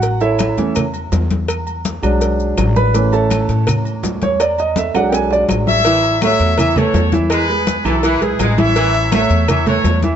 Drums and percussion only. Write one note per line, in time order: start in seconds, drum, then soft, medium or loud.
0.02 cowbell loud
0.02 high conga soft
0.02 low agogo medium
0.02 maracas medium
0.20 high conga soft
0.20 low agogo medium
0.20 maracas soft
0.39 cowbell medium
0.39 high conga loud
0.39 low timbale medium
0.39 low agogo loud
0.39 claves medium
0.39 maracas medium
0.58 cowbell medium
0.58 maracas soft
0.75 cowbell loud
0.75 high conga soft
0.75 low conga medium
0.75 low agogo loud
0.75 claves medium
0.75 maracas medium
0.94 high conga soft
0.94 low agogo medium
0.94 maracas soft
1.12 cowbell medium
1.12 high conga medium
1.12 low timbale medium
1.12 low agogo medium
1.12 maracas medium
1.30 cowbell medium
1.30 high conga medium
1.30 maracas soft
1.48 cowbell loud
1.48 high conga soft
1.48 low agogo loud
1.48 claves medium
1.48 maracas medium
1.67 high conga soft
1.67 low agogo medium
1.67 maracas soft
1.85 cowbell medium
1.85 high conga loud
1.85 low timbale medium
1.85 maracas medium
2.03 high conga soft
2.03 low agogo loud
2.03 claves medium
2.03 maracas soft
2.21 cowbell loud
2.21 high conga soft
2.21 low agogo medium
2.21 maracas medium
2.40 high conga soft
2.40 maracas soft
2.58 cowbell medium
2.58 high conga medium
2.58 low timbale medium
2.58 low agogo loud
2.58 claves medium
2.58 maracas medium
2.76 high conga medium
2.76 maracas soft
2.94 cowbell loud
2.94 high conga soft
2.94 low agogo medium
2.94 maracas medium
3.12 high conga soft
3.12 low agogo medium
3.12 maracas soft
3.30 cowbell medium
3.30 high conga loud
3.30 low timbale medium
3.30 low agogo loud
3.30 claves medium
3.30 maracas medium
3.49 cowbell medium
3.49 maracas soft
3.67 cowbell loud
3.67 high conga soft
3.67 low conga medium
3.67 low agogo loud
3.67 claves medium
3.67 maracas medium
3.85 high conga soft
3.85 low agogo medium
3.85 maracas soft
4.03 cowbell medium
4.03 high conga medium
4.03 low timbale medium
4.03 low agogo medium
4.03 maracas medium
4.22 cowbell medium
4.22 high conga medium
4.22 maracas soft
4.40 cowbell loud
4.40 high conga soft
4.40 low agogo loud
4.40 claves medium
4.40 maracas medium
4.58 high conga soft
4.58 low agogo medium
4.58 maracas soft
4.76 cowbell medium
4.76 high conga loud
4.76 high timbale medium
4.76 maracas medium
4.94 high conga soft
4.94 high timbale loud
4.94 low agogo loud
4.94 claves medium
4.94 maracas soft
5.12 cowbell loud
5.12 high conga soft
5.12 high timbale loud
5.12 low agogo medium
5.12 maracas medium
5.31 high conga soft
5.31 low timbale medium
5.31 maracas soft
5.49 cowbell medium
5.49 high conga medium
5.49 low timbale medium
5.49 low agogo loud
5.49 claves medium
5.49 maracas medium
5.67 high conga medium
5.67 low timbale medium
5.67 maracas soft
5.84 cowbell loud
5.84 low agogo medium
5.84 maracas medium
6.03 high conga soft
6.03 low agogo medium
6.03 maracas soft
6.21 cowbell medium
6.21 high conga loud
6.21 low timbale medium
6.21 low agogo loud
6.21 claves medium
6.21 maracas medium
6.40 cowbell medium
6.40 maracas soft
6.58 cowbell loud
6.58 high conga soft
6.58 low conga medium
6.58 low agogo loud
6.58 claves medium
6.58 maracas medium
6.76 high conga soft
6.76 low conga medium
6.76 low agogo medium
6.76 maracas soft
6.94 cowbell medium
6.94 high conga medium
6.94 low timbale medium
6.94 low agogo medium
6.94 maracas medium
7.12 cowbell medium
7.12 high conga medium
7.12 maracas soft
7.30 cowbell loud
7.30 low agogo loud
7.30 claves medium
7.30 maracas medium
7.48 high conga soft
7.48 low agogo medium
7.48 maracas soft
7.67 cowbell medium
7.67 high conga medium
7.67 low timbale medium
7.67 maracas medium
7.85 high conga soft
7.85 low agogo loud
7.85 claves medium
7.85 maracas soft
8.03 cowbell loud
8.03 high conga soft
8.03 low agogo medium
8.03 maracas medium
8.22 high conga soft
8.22 maracas soft
8.39 cowbell medium
8.39 high conga medium
8.39 low timbale loud
8.39 low agogo loud
8.39 claves medium
8.39 maracas medium
8.58 high conga loud
8.58 maracas soft
8.76 cowbell loud
8.76 high conga soft
8.76 low agogo loud
8.76 maracas medium
8.94 high conga soft
8.94 low agogo loud
8.94 maracas soft
9.12 cowbell medium
9.12 high conga loud
9.12 low timbale medium
9.12 low agogo loud
9.12 claves medium
9.12 maracas medium
9.30 cowbell medium
9.30 maracas soft
9.48 cowbell loud
9.48 high conga soft
9.48 low conga medium
9.48 low agogo loud
9.48 claves medium
9.48 maracas medium
9.66 high conga soft
9.66 low conga medium
9.66 low agogo loud
9.66 maracas soft
9.84 cowbell medium
9.84 high conga medium
9.84 low timbale medium
9.84 low agogo medium
9.84 maracas medium
10.02 cowbell medium
10.02 high conga loud
10.02 maracas soft